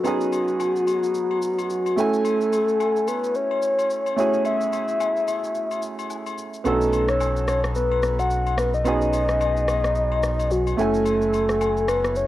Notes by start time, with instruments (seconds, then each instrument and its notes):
Already playing: soft synth lead F#4
0.04 grand piano B3 C#4 D#4 F#4 G#4, high agogo, shaker
0.21 shaker
0.33 high agogo, shaker
0.48 shaker
0.60 high agogo, low woodblock, shaker
0.76 shaker
0.87 high agogo, shaker
1.04 shaker
1.15 shaker
1.31 high agogo
1.42 shaker
1.59 high agogo, shaker
1.70 soft synth lead F#4, shaker
1.86 high agogo, shaker
1.96 grand piano A3 C#4 E4 F#4 G#5, soft synth lead A4, shaker
2.13 shaker
2.25 high agogo, shaker
2.41 shaker
2.53 high agogo, shaker
2.68 shaker
2.80 high agogo, low woodblock, shaker
2.96 shaker
3.08 soft synth lead B4, high agogo, shaker
3.24 shaker
3.35 soft synth lead C#5, shaker
3.51 high agogo
3.62 shaker
3.79 high agogo, shaker
3.90 shaker
4.06 high agogo, shaker
4.16 grand piano A3 C#4 E4 F#4 G#4, soft synth lead C#5, shaker
4.34 shaker
4.45 soft synth lead E5, high agogo, shaker
4.61 shaker
4.73 high agogo, shaker
4.88 shaker
5.00 high agogo, low woodblock, shaker
5.16 shaker
5.28 high agogo, shaker
5.44 shaker
5.55 shaker
5.71 high agogo, shaker
5.83 shaker
5.99 high agogo, shaker
6.10 low woodblock, shaker
6.26 high agogo, shaker
6.38 shaker
6.54 shaker
6.64 sub bass B1, grand piano B3 C#4 D4 F#4 A4, soft synth lead A4, high agogo, shaker
6.72 grand piano D#4
6.81 shaker
6.93 high agogo, shaker
7.08 soft synth lead C#5, cross-stick, shaker
7.21 high agogo, low woodblock, shaker
7.36 shaker
7.48 soft synth lead C#5, cross-stick, high agogo, shaker
7.64 cross-stick, shaker
7.75 soft synth lead B4, shaker
7.91 high agogo
8.03 cross-stick, shaker
8.19 soft synth lead F#5, high agogo, shaker
8.30 shaker
8.47 high agogo, shaker
8.58 soft synth lead B4, cross-stick, shaker
8.74 soft synth lead D#5, shaker
8.84 grand piano B3 C#4 D#4 F#4 G#4, high agogo, shaker
9.01 shaker
9.13 high agogo, shaker
9.29 cross-stick, shaker
9.41 high agogo, low woodblock, shaker
9.57 shaker
9.68 cross-stick, high agogo, shaker
9.84 cross-stick, shaker
9.95 shaker
10.12 high agogo
10.23 cross-stick, shaker
10.39 high agogo, shaker
10.51 soft synth lead F#4, shaker
10.67 high agogo, shaker
10.77 sub bass F#1, grand piano A3 C#4 E4 F#4 G#5, soft synth lead A4, shaker
10.94 shaker
11.06 high agogo, shaker
11.22 shaker
11.34 high agogo, shaker
11.49 cross-stick, shaker
11.61 high agogo, low woodblock, shaker
11.77 shaker
11.88 soft synth lead B4, cross-stick, high agogo, shaker
12.05 cross-stick, shaker
12.16 soft synth lead C#5, shaker